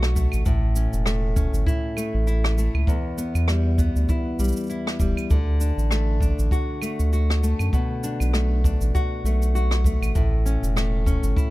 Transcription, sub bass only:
0.00 0.27 B1 loud
0.33 0.43 A1 medium
0.46 0.88 A1 medium
0.93 1.48 E1 medium
1.53 1.64 G1 loud
2.14 2.69 A1 loud
2.74 2.85 C#2 medium
3.35 3.90 E2 medium
3.96 4.06 D2 loud
4.39 4.53 B1 medium
5.00 5.13 E1 medium
5.30 5.72 D2 medium
5.77 6.33 A1 medium
6.38 6.49 A1 loud
6.99 7.54 D2 loud
7.60 7.70 F#2 medium
8.20 8.75 B1 medium
8.81 8.91 A1 loud
9.24 9.96 B1 loud
10.02 10.12 A1 medium
10.16 10.57 A1 medium
10.62 11.17 E1 medium
11.23 11.34 G1 loud

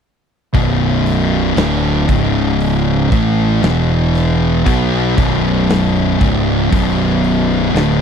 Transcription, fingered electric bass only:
0.55 1.53 B0 loud
1.57 2.05 D1 medium
2.09 3.08 C#1 loud
3.12 3.60 A1 loud
3.63 4.62 E1 medium
4.66 5.14 B1 medium
5.18 6.17 B0 loud
6.22 6.69 C#1 loud
6.73 7.71 B0 loud
7.74 8.02 D1 loud

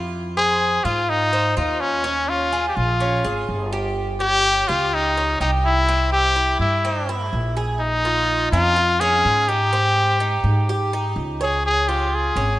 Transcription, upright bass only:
0.00 0.78 F2 medium
0.85 1.52 G#2 medium
1.57 2.70 D#2 medium
2.77 3.21 A#1 medium
3.25 3.47 G#1 medium
3.49 4.62 G1 medium
4.69 5.37 C#2 medium
5.40 6.54 C2 medium
6.59 7.28 G2 medium
7.33 8.46 A#1 medium
8.52 9.20 F2 loud
9.25 10.38 G#2 medium
10.44 11.12 G#2 medium
11.16 12.30 C#2 medium
12.36 12.59 G#1 medium

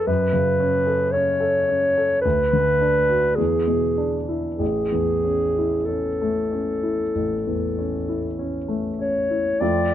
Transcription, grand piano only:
0.00 0.10 F2 soft
0.00 0.10 C#4 soft
0.00 0.10 G#4 soft
0.00 0.11 B4 soft
0.07 2.20 F#2 soft
0.33 0.76 C#3 soft
0.60 1.03 C#4 soft
0.87 1.30 A4 soft
1.14 1.58 C#4 soft
1.41 1.85 A4 soft
1.69 2.13 C#4 soft
1.98 2.25 A4 soft
2.25 3.36 D2 soft
2.53 2.99 D3 soft
2.81 3.27 D4 soft
3.10 3.39 F#4 soft
3.38 4.57 E2 soft
3.67 4.16 B2 soft
3.98 4.48 D4 soft
4.29 4.61 E4 soft
4.59 7.12 A1 soft
4.92 5.44 E2 soft
5.25 5.76 C#4 soft
5.58 6.08 E4 soft
5.89 6.40 C#4 soft
6.22 6.72 A3 soft
6.52 7.03 C#4 soft
6.83 7.35 E4 soft
7.15 9.56 A1 soft
7.47 7.97 E2 soft
7.79 8.27 C#4 soft
8.09 8.57 E4 soft
8.39 8.87 C#4 soft
8.68 9.18 A3 soft
8.99 9.48 C#4 soft
9.30 9.61 E4 soft
9.61 9.94 F2 soft
9.61 9.94 A3 soft
9.61 9.94 C4 soft
9.61 9.94 F4 soft

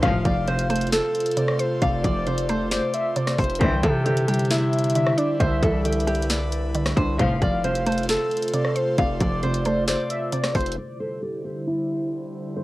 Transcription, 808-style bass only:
0.03 0.24 F1 loud
0.25 1.00 F1 loud
1.82 2.03 F1 loud
2.04 2.80 F1 loud
3.39 3.60 F1 loud
3.61 3.83 C2 loud
3.83 5.14 C3 loud
5.40 5.62 C2 loud
5.63 6.93 C2 loud
6.97 7.18 C2 loud
7.19 7.41 F1 loud
7.42 8.17 F1 loud
8.98 9.20 F1 loud
9.21 9.96 F1 loud
10.55 10.77 F1 loud

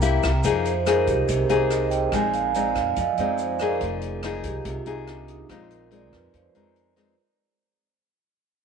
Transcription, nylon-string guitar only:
0.00 0.42 C3 soft
0.00 0.31 A#3 soft
0.00 0.31 E4 medium
0.00 0.31 G4 medium
0.44 1.27 F3 soft
0.44 0.72 A#3 soft
0.44 0.72 D#4 soft
0.44 0.72 G#4 soft
0.86 1.46 A#3 medium
0.86 1.47 D#4 medium
0.86 1.47 G#4 soft
1.29 2.11 C3 soft
1.49 2.09 A#3 medium
1.49 2.10 D#4 medium
1.49 2.10 G#4 medium
2.13 2.95 A#2 soft
2.13 2.52 G#3 soft
2.13 2.52 C4 soft
2.13 2.52 D#4 medium
2.55 2.97 G#3 soft
2.55 2.97 C4 medium
2.55 2.97 D#4 soft
2.97 3.79 F3 soft
3.19 3.57 G#3 soft
3.19 3.58 C4 soft
3.19 3.58 D#4 medium
3.61 4.20 A#3 medium
3.61 4.20 D#4 medium
3.61 4.21 G#4 medium
3.82 4.64 F3 soft
4.24 4.83 A#3 soft
4.24 4.83 D#4 soft
4.24 4.84 G#4 medium
4.66 5.47 C3 soft
4.86 5.46 A#3 medium
4.86 5.46 D#4 medium
4.86 5.46 G#4 medium
5.50 6.32 A#2 soft
5.50 5.88 G#3 soft
5.50 5.89 C4 soft
5.50 5.89 D#4 medium
5.91 6.51 G#3 soft
5.91 6.51 C4 soft
5.91 6.51 D#4 medium
6.34 7.16 F3 soft
6.55 6.93 G#3 soft
6.55 6.93 C4 soft
6.55 6.94 D#4 medium
6.96 7.14 G#3 medium
6.96 7.14 C4 medium
6.96 7.14 D#4 medium

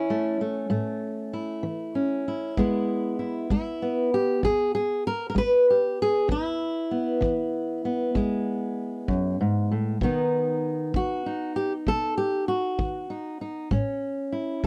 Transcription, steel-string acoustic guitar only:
0.00 0.34 E3 medium
0.00 1.64 C#4 medium
0.00 0.39 E4 medium
0.10 0.40 A3 soft
0.41 0.69 A3 soft
0.70 1.26 A2 medium
0.70 2.53 A3 medium
1.33 2.27 E4 soft
1.63 2.19 E3 medium
1.95 2.54 C#4 medium
2.28 2.59 E4 medium
2.57 3.13 E2 medium
2.57 3.51 G#3 medium
2.57 3.82 B3 medium
2.57 3.19 E4 medium
3.19 3.50 E4 soft
3.51 4.07 G#3 medium
3.51 4.13 E4 medium
3.82 6.91 B3 medium
4.14 4.44 G4 medium
4.43 4.99 E2 medium
4.43 4.74 G#4 loud
4.75 5.06 G#4 medium
5.07 5.28 A#4 medium
5.30 5.37 A#4 medium
5.35 5.91 G#3 medium
5.35 5.68 B4 loud
5.70 6.00 G4 medium
6.02 6.31 G#4 loud
6.28 6.85 E2 medium
6.28 10.02 E4 medium
6.91 7.85 B3 soft
7.21 7.77 E3 medium
7.85 10.01 B3 soft
8.15 8.71 E2 medium
8.15 9.97 G#3 medium
9.08 9.39 F#2 medium
9.41 9.71 G#2 medium
9.71 10.01 A2 medium
10.02 10.57 B2 medium
10.02 10.95 D#3 medium
10.02 13.69 B3 medium
10.02 11.25 D#4 medium
10.96 11.50 D#3 medium
10.96 11.56 F#4 medium
11.26 13.09 D#4 soft
11.56 11.72 G4 medium
11.88 12.43 B2 medium
11.88 12.17 A4 loud
12.18 12.48 G4 medium
12.48 13.41 F#4 medium
12.78 13.34 D#3 medium
13.10 13.40 D#4 soft
13.41 13.68 D#4 soft
13.71 14.27 A2 medium
13.71 14.67 C#4 medium
14.32 14.67 E4 medium

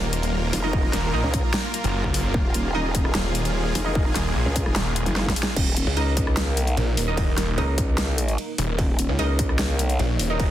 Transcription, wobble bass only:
0.53 0.92 F1 loud
1.24 1.42 C#2 loud
2.34 3.13 D#1 medium
3.75 4.14 F1 loud
4.46 4.64 C#2 loud
4.66 4.74 F1 loud
5.06 5.35 F#1 loud
5.57 5.85 D#1 medium
5.97 6.53 C#2 loud
6.53 6.76 C2 loud
7.58 8.37 C#2 loud
8.79 9.07 D#1 medium
9.19 9.75 C#2 loud
9.75 9.98 C2 loud

